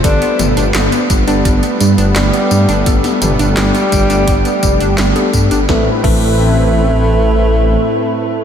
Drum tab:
CC |----------------|----------------|--x-------------|
HH |xxxxxxxxxxxxxxxx|xxxxxxxxxxxxxxxx|----------------|
TB |xxxxxxxxxxxxxxxx|xxxxxxxxxxxxxxxx|----------------|
CP |----x-------x---|----x-------x---|----------------|
SD |----o-------o---|-o--o-------o---|o---------------|
T2 |--o-------------|--o-------------|----------------|
BD |o-----o-o-------|o-----o-o-o---o-|o-o-------------|